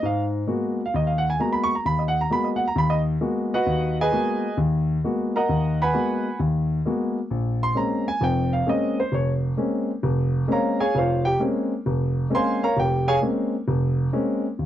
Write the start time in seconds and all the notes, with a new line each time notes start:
0.03 G#2 F5
0.47 G#3 A#3 B3 F#4
0.86 F5
0.94 D#2 D#5
1.07 F5
1.18 F#5
1.30 G#5
1.40 G#3 A#3 B3 F#4 A#5
1.53 B5
1.64 C#6
1.75 A#5
1.85 D#2 B5
1.99 D#5
2.08 F#5
2.21 A#5
2.30 G#3 A#3 B3 F#4 B5
2.44 D#5
2.56 F#5
2.68 A#5
2.76 D#2 B5
2.90 D#5
3.21 G#3 A#3 B3 F#4
3.54 F#4 B4 D#5 F#5
3.66 D#2
4.01 G#4 B4 D#5 G#5
4.12 G#3 A#3 B3 F#4
4.57 D#2
5.04 G#3 A#3 B3 F#4
5.36 A#4 D#5 F#5 A#5
5.49 D#2
5.82 B4 F#5 G#5 B5
5.93 G#3 A#3 B3 F#4
6.39 D#2
6.85 G#3 A#3 B3 F#4
7.30 A#1
7.63 C6
7.75 G#3 A#3 C4 C#4 A#5
8.08 G#5
8.21 F1 F2 G5
8.53 F5
8.66 G#3 A#3 C4 C#4 D#5
9.00 C5
9.12 F1 C#5
9.57 G#3 A#3 C4 C#4
10.03 F1
10.48 G#3 A#3 C4 C#4
10.52 A#4 C#5 F5 A#5
10.80 G#4 C#5 F5 G#5
10.95 F1 F4 C5 C#5 F5
11.25 G4 G5
11.40 G#3 A#3 C4 C#4
11.86 F1
12.30 G#3 A#3 C4 C#4
12.35 C5 F5 G#5 C6
12.63 A#4 C#5 F5 A#5
12.77 F1 G4 G5
13.08 G#4 C#5 F5 G#5
13.22 G#3 A#3 C4 C#4
13.68 F1
14.13 G#3 A#3 C4 C#4
14.59 D#2